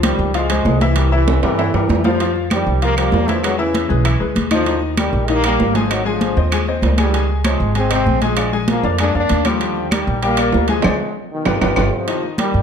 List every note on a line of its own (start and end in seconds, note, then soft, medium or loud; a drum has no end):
0.00 0.13 C#2 medium
0.00 0.29 F3 medium
0.00 0.29 G4 medium
0.00 0.29 C5 medium
0.00 high conga medium
0.00 high timbale medium
0.04 0.33 D#3 medium
0.04 0.33 G3 medium
0.19 0.62 C#2 medium
0.19 high conga soft
0.34 0.47 F3 medium
0.34 0.50 F3 medium
0.34 0.50 G#3 medium
0.34 0.47 F4 medium
0.34 0.48 F5 medium
0.34 high conga soft
0.34 high timbale medium
0.49 0.79 F3 medium
0.49 0.75 G#3 medium
0.49 0.80 G#3 medium
0.49 0.75 G#4 medium
0.49 0.76 C5 medium
0.49 high conga soft
0.49 high timbale medium
0.65 1.37 C2 loud
0.65 high conga medium
0.65 low timbale medium
0.81 1.13 C3 medium
0.81 0.94 E3 medium
0.81 1.12 E3 medium
0.81 0.94 E4 medium
0.81 0.94 E5 medium
0.81 high conga medium
0.81 high timbale medium
0.96 1.09 G3 medium
0.96 1.09 G4 medium
0.96 1.09 A#4 medium
0.96 high conga soft
0.96 high timbale medium
1.12 1.42 C3 medium
1.12 1.37 E3 medium
1.12 1.41 E3 medium
1.12 1.37 E4 medium
1.12 1.37 E5 medium
1.12 high conga soft
1.28 high conga medium
1.28 high timbale medium
1.43 1.72 G2 medium
1.43 2.01 C3 medium
1.43 2.01 E3 medium
1.43 1.56 G3 medium
1.43 1.56 G4 medium
1.43 1.56 A#4 medium
1.43 high conga soft
1.43 high timbale medium
1.58 1.71 E3 medium
1.58 1.71 E4 medium
1.58 1.71 E5 medium
1.58 high conga soft
1.58 high timbale medium
1.74 1.88 G2 medium
1.74 1.99 G3 medium
1.74 1.99 G4 medium
1.74 2.00 A#4 medium
1.74 high conga soft
1.74 low timbale medium
1.89 2.61 F2 medium
1.89 high conga medium
1.89 low timbale medium
2.04 2.34 C3 medium
2.04 2.17 F3 medium
2.04 2.34 F3 medium
2.04 2.17 F4 medium
2.04 2.17 F5 medium
2.04 high conga medium
2.04 low timbale medium
2.20 2.46 F3 medium
2.20 2.46 F4 medium
2.20 2.46 F5 medium
2.20 high conga soft
2.20 high timbale medium
2.36 high conga soft
2.50 2.81 D#3 medium
2.50 2.76 F3 medium
2.50 2.81 G3 medium
2.50 2.76 G4 medium
2.50 2.77 C5 medium
2.50 high conga medium
2.50 high timbale medium
2.50 claves medium
2.67 3.10 C2 medium
2.67 high conga soft
2.82 2.94 F3 medium
2.82 2.97 G3 medium
2.82 2.97 A#3 loud
2.82 2.95 F4 medium
2.82 2.95 F5 medium
2.82 high conga soft
2.82 high timbale medium
2.97 3.23 F3 medium
2.97 3.27 G3 medium
2.97 3.26 A#3 loud
2.97 3.23 G4 medium
2.97 3.23 C5 medium
2.97 high conga soft
2.97 high timbale medium
2.97 claves medium
3.12 3.84 E2 medium
3.12 high conga medium
3.12 low timbale medium
3.28 3.44 D3 medium
3.28 3.41 E3 medium
3.28 3.44 F3 medium
3.28 3.41 E4 medium
3.28 3.41 E5 medium
3.28 high conga medium
3.28 high timbale medium
3.43 3.60 D3 medium
3.43 3.60 F#3 medium
3.43 3.56 G#3 medium
3.43 3.57 G#4 medium
3.43 3.57 B4 medium
3.43 high conga soft
3.43 high timbale medium
3.43 claves medium
3.58 4.17 C#3 medium
3.58 4.16 E3 medium
3.58 3.84 E3 medium
3.58 3.84 E4 medium
3.58 3.84 E5 medium
3.58 high conga soft
3.75 high conga medium
3.75 high timbale medium
3.89 4.19 B1 medium
3.89 4.02 G#3 medium
3.89 4.02 G#4 medium
3.89 4.02 B4 medium
3.89 high conga soft
4.05 4.18 E3 medium
4.05 4.18 E4 medium
4.05 4.18 E5 medium
4.05 high conga soft
4.05 high timbale medium
4.05 claves medium
4.20 4.35 C#2 medium
4.20 4.45 G#3 medium
4.20 4.46 G#4 medium
4.20 4.46 B4 medium
4.20 high conga soft
4.36 5.08 D#2 medium
4.36 high conga medium
4.36 high timbale medium
4.51 4.81 D3 medium
4.51 4.64 D#3 medium
4.51 4.81 F3 medium
4.51 4.64 D#4 medium
4.51 4.64 D#5 medium
4.51 high conga medium
4.51 high timbale medium
4.51 claves medium
4.66 4.92 D#3 medium
4.66 4.93 D#4 medium
4.66 4.93 D#5 medium
4.66 high conga soft
4.66 high timbale medium
4.82 high conga soft
4.97 5.28 D#3 medium
4.97 5.23 G3 medium
4.97 5.28 G3 medium
4.97 5.23 G4 medium
4.97 5.24 A#4 medium
4.97 high conga loud
4.97 high timbale medium
4.97 claves medium
5.13 5.56 A#1 medium
5.13 high conga soft
5.28 5.42 D#3 medium
5.28 5.45 G3 medium
5.28 5.45 A#3 loud
5.28 5.42 D#4 medium
5.28 5.42 D#5 medium
5.28 high conga soft
5.28 high timbale medium
5.44 5.70 G3 medium
5.44 5.74 G3 medium
5.44 5.74 A#3 loud
5.44 5.70 G4 medium
5.44 5.70 A#4 medium
5.44 high conga soft
5.44 high timbale medium
5.44 claves medium
5.60 6.32 G#1 medium
5.60 high conga medium
5.60 low timbale medium
5.75 5.91 D3 medium
5.75 5.91 F3 medium
5.75 5.88 G#3 medium
5.75 5.88 G#4 medium
5.75 5.88 G#5 medium
5.75 high conga medium
5.75 high timbale medium
5.90 6.07 D#3 medium
5.90 6.07 F#3 medium
5.90 6.03 C4 medium
5.90 6.03 C5 medium
5.90 6.03 D#5 medium
5.90 high conga soft
5.90 high timbale medium
5.90 claves medium
6.05 6.64 D3 medium
6.05 6.64 F3 medium
6.05 6.31 G#3 medium
6.05 6.31 G#4 medium
6.05 6.31 G#5 medium
6.05 high conga soft
6.21 high conga medium
6.21 high timbale medium
6.37 6.80 D#2 medium
6.37 6.50 C4 medium
6.37 6.50 C5 medium
6.37 6.50 D#5 medium
6.37 high conga soft
6.52 6.65 G#3 medium
6.52 6.65 G#4 medium
6.52 6.65 G#5 medium
6.52 high conga soft
6.52 high timbale medium
6.52 claves medium
6.67 6.93 C4 medium
6.67 6.94 C5 medium
6.67 6.93 D#5 medium
6.67 high conga soft
6.82 7.54 C#2 medium
6.82 high conga medium
6.82 high timbale medium
6.82 low timbale medium
6.97 7.28 D#3 medium
6.97 7.29 G3 medium
6.97 7.11 G#3 medium
6.97 7.11 G#4 medium
6.97 7.11 G#5 medium
6.97 high conga medium
6.97 high timbale medium
6.97 claves medium
7.13 7.39 G#3 medium
7.13 7.39 G#4 medium
7.13 7.39 G#5 medium
7.13 high conga soft
7.13 high timbale medium
7.29 high conga soft
7.44 7.70 C3 medium
7.44 7.75 F3 medium
7.44 7.75 G#3 medium
7.44 7.70 C5 medium
7.44 7.70 C#5 medium
7.44 high conga loud
7.44 high timbale medium
7.44 claves medium
7.60 8.03 G#1 medium
7.60 high conga soft
7.75 7.88 G#3 medium
7.75 7.91 G#3 medium
7.75 7.91 C4 medium
7.75 7.88 G#4 medium
7.75 7.88 G#5 medium
7.75 high conga soft
7.75 high timbale medium
7.90 8.16 C3 medium
7.90 8.21 G#3 medium
7.90 8.21 C4 loud
7.90 8.16 C5 medium
7.90 8.16 D#5 medium
7.90 high conga soft
7.90 high timbale medium
7.90 claves medium
8.06 8.78 A#1 medium
8.06 high conga medium
8.21 8.51 F3 medium
8.21 8.34 G#3 medium
8.21 8.51 G#3 medium
8.21 8.35 G#4 medium
8.21 8.35 G#5 medium
8.21 high conga medium
8.21 high timbale medium
8.37 8.50 D4 medium
8.37 8.50 D5 medium
8.37 8.50 F5 medium
8.37 high conga soft
8.37 high timbale medium
8.37 claves medium
8.53 8.78 G#3 medium
8.53 8.78 G#4 medium
8.53 8.78 G#5 medium
8.53 high conga soft
8.68 8.98 F3 medium
8.68 8.98 A#3 loud
8.68 high conga loud
8.68 high timbale medium
8.83 9.12 F2 medium
8.83 8.96 D4 medium
8.83 8.97 D5 medium
8.83 8.97 F5 medium
8.83 high conga soft
8.98 9.12 G#3 medium
8.98 9.14 A#3 medium
8.98 9.14 D4 loud
8.98 9.12 G#4 medium
8.98 9.12 G#5 medium
8.98 high conga soft
8.98 high timbale medium
8.98 claves medium
9.14 9.29 F2 medium
9.14 9.44 A#3 medium
9.14 9.40 D4 medium
9.14 9.44 D4 loud
9.14 9.40 D5 medium
9.14 9.40 F5 medium
9.14 high conga soft
9.29 10.02 D#2 medium
9.29 high conga medium
9.29 high timbale medium
9.45 9.92 D3 medium
9.45 9.92 F3 medium
9.45 9.58 G3 medium
9.45 9.58 G4 medium
9.45 9.58 G5 medium
9.45 high conga medium
9.45 high timbale medium
9.45 claves medium
9.61 9.86 G3 medium
9.61 9.87 G4 medium
9.61 9.87 G5 medium
9.61 high conga soft
9.61 high timbale medium
9.77 high conga soft
9.91 10.23 D#3 medium
9.91 10.22 G3 loud
9.91 10.17 A#3 medium
9.91 10.17 A#4 medium
9.91 10.17 D5 medium
9.91 high conga loud
9.91 high timbale medium
9.91 claves medium
10.07 10.50 A#1 medium
10.07 high conga soft
10.22 10.35 G3 medium
10.22 10.66 G3 medium
10.22 10.66 A#3 loud
10.22 10.35 G4 medium
10.22 10.36 G5 medium
10.22 high conga soft
10.22 high timbale medium
10.37 10.63 A#3 medium
10.37 10.64 A#4 medium
10.37 10.64 D5 medium
10.37 high conga soft
10.37 high timbale medium
10.37 claves medium
10.52 10.82 D2 medium
10.52 high conga medium
10.52 low timbale medium
10.68 11.16 F3 medium
10.68 10.82 G#3 medium
10.68 11.15 G#3 medium
10.68 10.82 G#4 medium
10.68 10.82 G#5 medium
10.68 high conga medium
10.68 high timbale medium
10.82 10.96 D2 medium
10.82 10.94 G#4 medium
10.82 10.94 C5 medium
10.82 10.94 D5 medium
10.82 low conga medium
10.82 high timbale loud
10.82 claves medium
11.32 11.89 B2 medium
11.32 11.89 D#3 medium
11.45 11.58 G1 medium
11.45 11.56 F4 medium
11.45 11.56 G4 medium
11.45 11.56 B4 medium
11.45 low conga medium
11.45 high timbale loud
11.45 claves medium
11.61 11.73 G1 medium
11.61 11.71 F4 medium
11.61 11.71 G4 medium
11.61 11.71 B4 medium
11.61 low conga loud
11.61 high timbale medium
11.61 claves medium
11.76 11.88 G1 medium
11.76 11.87 F4 medium
11.76 11.87 G4 medium
11.76 11.86 B4 medium
11.76 low conga loud
11.76 high timbale medium
11.76 claves loud
11.87 11.93 G3 medium
11.94 12.25 C3 medium
11.94 12.24 F3 medium
12.07 12.33 D#3 medium
12.07 12.33 D#4 medium
12.07 12.33 D#5 medium
12.07 high conga soft
12.07 high timbale medium
12.23 high conga soft
12.38 12.62 D#3 medium
12.38 12.62 G3 medium
12.38 12.62 G3 loud
12.38 12.62 G4 medium
12.38 12.62 A#4 medium
12.38 high conga loud
12.38 high timbale medium
12.54 12.62 G2 medium
12.54 high conga soft